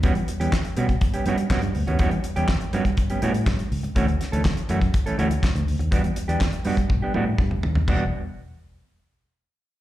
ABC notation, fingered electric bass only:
X:1
M:4/4
L:1/16
Q:1/4=122
K:Edor
V:1 name="Fingered electric bass" clef=bass
E,,2 z E,,2 z B,,2 z2 G,,2 z G,, D,, ^D,, | E,,2 z E,,2 z G,,2 z2 A,,2 G,,2 C,,2 | D,,2 z D,,2 z F,,2 z2 D,,2 z D,, D,, ^D,, | E,,2 z E,,2 z G,,2 z2 A,,2 G,,2 ^D,,2 |
E,,,2 z12 z2 |]